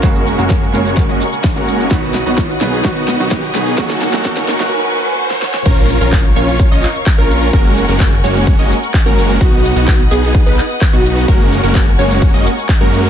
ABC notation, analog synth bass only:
X:1
M:4/4
L:1/16
Q:1/4=128
K:F#
V:1 name="Analog synth bass" clef=bass
F,,,3 F,,,3 F,,,3 F,,, z3 F,,,3 | B,,,3 B,,,3 B,,,2 B,,,3 B,,,3 B,,,2 | F,,,3 F,,, F,,,3 F,,, z8 | A,,,3 A,,,3 A,,,3 A,,, z3 A,,,3 |
F,,,3 F,,,3 F,,,3 F,,, z3 F,,,3 | B,,,3 B,,,3 B,,,3 B,,, z3 B,,,3 | F,,,3 F,,,3 F,,,3 F,,, z3 F,,3 |]